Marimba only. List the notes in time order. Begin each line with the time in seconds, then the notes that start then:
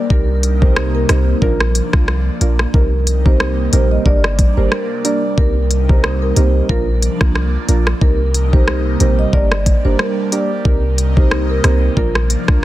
0.10 A#4
0.62 C5
0.95 A#4
1.09 C5
1.42 A#4
2.74 A#4
3.26 C5
3.73 C5
3.91 D#5
4.06 D5
4.57 C5
4.72 A#4
5.05 D5
5.38 A#4
5.89 C5
6.22 A#4
6.37 C5
6.69 A#4
8.01 A#4
8.53 C5
9.00 C5
9.19 D#5
9.33 D5
9.85 C5
9.99 A#4
10.32 D5
10.65 A#4
11.17 C5
11.50 A#4
11.97 A#4